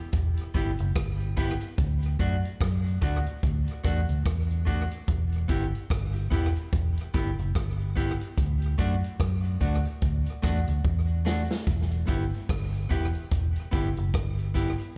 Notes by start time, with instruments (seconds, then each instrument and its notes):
0.12 fingered electric bass E1, kick, closed hi-hat
0.37 closed hi-hat
0.54 fingered electric bass G1, clean electric guitar B3 E4 G4, kick, closed hi-hat
0.79 fingered electric bass F#1, closed hi-hat
0.96 fingered electric bass G1, kick, cross-stick, closed hi-hat
1.20 closed hi-hat
1.37 clean electric guitar B3 E4 G4, kick, closed hi-hat
1.61 muted clean electric guitar stroke, closed hi-hat
1.78 fingered electric bass D2, kick, closed hi-hat
2.03 closed hi-hat
2.19 fingered electric bass F#2, clean electric guitar A3 D4 F#4, kick, closed hi-hat
2.45 closed hi-hat
2.61 fingered electric bass F#2, kick, cross-stick, closed hi-hat
2.85 muted clean electric guitar stroke, closed hi-hat
3.02 fingered electric bass D2, clean electric guitar A3 D4 F#4, kick, closed hi-hat
3.27 closed hi-hat
3.43 fingered electric bass D2, kick, closed hi-hat
3.68 closed hi-hat
3.84 fingered electric bass E2, clean electric guitar A3 D4 F#4, kick, cross-stick, closed hi-hat
4.09 fingered electric bass D2, closed hi-hat
4.26 fingered electric bass E2, kick, cross-stick, closed hi-hat
4.51 closed hi-hat
4.65 clean electric guitar A3 D4 F#4, kick, closed hi-hat
4.91 closed hi-hat
5.08 fingered electric bass E1, kick, closed hi-hat
5.32 closed hi-hat
5.48 fingered electric bass G1, clean electric guitar B3 E4 G4, kick, closed hi-hat
5.75 closed hi-hat
5.90 fingered electric bass G1, kick, cross-stick, closed hi-hat
6.14 muted clean electric guitar stroke, closed hi-hat
6.30 fingered electric bass E1, clean electric guitar B3 E4 G4, kick, closed hi-hat
6.56 closed hi-hat
6.73 fingered electric bass E1, kick, closed hi-hat
6.97 closed hi-hat
7.14 fingered electric bass G1, clean electric guitar B3 E4 G4, kick, cross-stick, closed hi-hat
7.39 fingered electric bass F#1, closed hi-hat
7.55 fingered electric bass G1, kick, cross-stick, closed hi-hat
7.80 closed hi-hat
7.96 clean electric guitar B3 E4 G4, kick, closed hi-hat
8.20 muted clean electric guitar stroke, closed hi-hat
8.38 fingered electric bass D2, kick, closed hi-hat
8.62 closed hi-hat
8.78 fingered electric bass F#2, clean electric guitar A3 D4 F#4, kick, closed hi-hat
9.04 closed hi-hat
9.20 fingered electric bass F#2, kick, cross-stick, closed hi-hat
9.44 muted clean electric guitar stroke, closed hi-hat
9.61 fingered electric bass D2, clean electric guitar A3 D4 F#4, kick, closed hi-hat
9.85 closed hi-hat
10.02 fingered electric bass D2, kick, closed hi-hat
10.26 closed hi-hat
10.42 fingered electric bass E2, clean electric guitar A3 D4 F#4, kick, cross-stick, closed hi-hat
10.68 fingered electric bass D2, closed hi-hat
10.85 fingered electric bass E2, kick
11.25 clean electric guitar A3 D4 F#4, snare
11.51 snare
11.67 fingered electric bass E1, kick, closed hi-hat
11.91 closed hi-hat
12.07 fingered electric bass G1, clean electric guitar B3 E4 G4, kick, closed hi-hat
12.34 closed hi-hat
12.49 fingered electric bass G1, kick, cross-stick, closed hi-hat
12.73 muted clean electric guitar stroke, closed hi-hat
12.89 fingered electric bass E1, clean electric guitar B3 E4 G4, kick, closed hi-hat
13.15 closed hi-hat
13.31 fingered electric bass E1, kick, closed hi-hat
13.56 closed hi-hat
13.71 fingered electric bass G1, clean electric guitar B3 E4 G4, kick, closed hi-hat
13.97 fingered electric bass F#1, closed hi-hat
14.14 fingered electric bass G1, kick, cross-stick, closed hi-hat
14.39 closed hi-hat
14.54 clean electric guitar B3 E4 G4, kick, closed hi-hat
14.79 muted clean electric guitar stroke, closed hi-hat